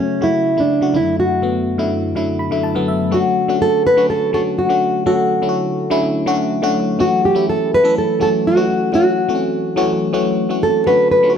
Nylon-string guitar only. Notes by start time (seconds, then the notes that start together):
0.00 C#4
0.24 E4
0.60 D4
0.96 E4
1.20 F#4
3.14 F#4
3.62 A4
3.87 B4
4.10 A4
4.34 A4
4.59 F#4
5.07 F#4
7.01 F#4
7.25 G4
7.50 A4
7.74 B4
7.98 A4
8.22 A4
8.47 F#4
8.95 F#4
10.63 A4
10.87 B4
11.11 B4